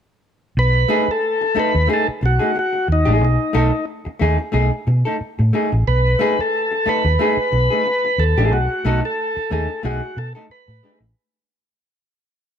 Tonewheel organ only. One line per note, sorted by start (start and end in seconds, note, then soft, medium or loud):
0.59 1.11 B4 loud
1.11 1.59 A4 medium
1.60 1.89 B4 loud
1.93 2.07 A4 loud
2.26 2.58 F#4 medium
2.59 2.88 F#4 medium
2.92 3.23 D#4 medium
3.25 3.85 D#4 medium
5.88 6.40 B4 loud
6.41 6.89 A4 medium
6.89 8.24 B4 loud
8.20 8.53 A4 medium
8.53 9.00 F#4 medium
9.05 9.51 A4 medium
9.53 9.83 A4 medium
9.85 10.19 F#4 medium
10.18 10.33 A4 medium
10.51 10.99 B4 medium